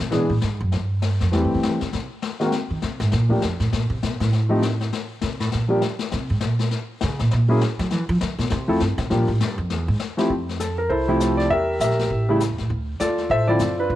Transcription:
0.00 C3
0.11 B2 E3 G#3 B3 D4 G#4, brush sweep, snare
0.30 A2
0.42 G#2, snare
0.61 F#2
0.72 G2, brush sweep, snare
1.02 snare
1.20 F2, snare
1.32 E2 E3 G3 A3 C4 G4, brush sweep, snare
1.45 G2
1.55 C3
1.63 E3, snare
1.81 D3, snare
1.93 C3, brush sweep, snare
2.22 snare
2.40 D#3 G#3 A#3 C4 F#4, snare
2.52 brush sweep, snare
2.70 D#3
2.82 C3, snare
3.00 G#2, snare
3.12 A#2, brush sweep, snare
3.29 D2 F3 A3 A#3 D4 G4
3.42 F2, snare
3.60 A2, snare
3.73 A#2, brush sweep, snare
3.90 C3
4.03 B2, snare
4.20 A2, snare
4.33 brush sweep, snare
4.49 F3 A3 C4 D#4 G4
4.62 snare
4.81 snare
4.93 brush sweep, snare
5.21 C3, snare
5.40 A2, snare
5.52 A#2, brush sweep, snare
5.68 F3 G3 A#3 D4 G4
5.82 snare
5.99 snare
6.12 C3, brush sweep, snare
6.30 G#2
6.41 A#2, snare
6.59 snare
6.71 brush sweep, snare
7.01 C#3, snare
7.19 A#2, snare
7.31 A#2, brush sweep, snare
7.48 F#3 A#3 C#4 E4 G#4
7.61 snare
7.79 F#3, snare
7.91 E3, brush sweep, snare
8.09 F3
8.21 D3, snare
8.39 B2, snare
8.50 C3, brush sweep, snare
8.68 E2 F3 A3 C4 E4 A4
8.80 G2, snare
8.98 C3, snare
9.10 A#2 F3 G3 A#3 D4 G4, brush sweep, snare
9.28 A2
9.41 G2, snare
9.58 F2
9.70 E2, brush sweep, snare
9.88 G#2
10.00 snare
10.17 F3 A3 C4 E4 G4, snare
10.30 F2, brush sweep, kick
10.49 snare
10.60 A4, snare, hi-hat pedal
10.78 A#4
10.89 C2 E4 A4 C5, brush sweep, kick
11.08 C3 F3 A3 E4
11.20 snare, hi-hat pedal
11.37 D5, snare
11.50 E2 G4 A#4 E5, brush sweep, kick
11.80 A#1 A#4 E5, snare, hi-hat pedal
11.84 G4
11.90 snare
11.99 snare
12.01 snare
12.11 A1, brush sweep, kick
12.29 C#3 G3 A3 E4
12.40 snare, hi-hat pedal
12.50 E2
12.58 A2, snare
12.70 D2, brush sweep, kick
13.00 D#2 F4 A4 D5, snare, hi-hat pedal
13.18 snare
13.30 A1 A4 C5 E5, brush sweep, kick
13.47 D3 F3 C4 E4 F4 A4 D5
13.59 F#2, snare, hi-hat pedal
13.79 D4 F4 B4
13.90 B1, brush sweep, kick

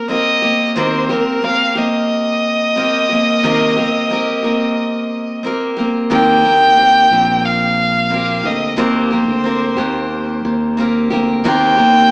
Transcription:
Already playing: G4
0.08 A#3 C4 G4 A#4 D#5
0.42 A#3 C4 G4 A#4
0.76 C3 D#3 A#3 C4 G4 A#4 C5
1.09 A#3 C4 G4 A#4
1.42 A#3 C4 G4 A#4 F5
1.75 A#3 C4 G4 A#4 D#5
2.76 A#3 C4 G4 A#4
3.09 A#3 C4 G4 A#4
3.43 C3 D#3 A#3 C4 G4 A#4
3.76 A#3 C4 G4 A#4
4.10 A#3 C4 G4 A#4
4.43 A#3 C4 G4 A#4
5.43 A#3 C4 G4 A#4
5.77 A#3 C4 G4 A#4
6.10 D#2 C3 D#3 A#3 C4 G4 A#4 G5
6.43 A#3 C4 G4 A#4
6.76 A#3 C4 G4 A#4
7.10 A#1 A#3 C4 G4 A#4
7.45 F5
8.10 A#3 C4 G4 A#4
8.43 D2 A#3 C4 G4 A#4 D#5
8.76 D#2 C3 D#3 A#3 C4 G4 A#4 C5
9.10 A#3 C4 G4 A#4
9.28 D2
9.44 A#3 C4 G4 A#4
9.77 D#2 A#3 C4 G4 A#4
10.45 D#2
10.77 A#3 C4 G4 A#4
11.10 D2 A#3 C4 G4 A#4
11.44 D#2 C3 D#3 A#3 C4 G4 A#4 G5
11.77 A#3 C4 G4 A#4

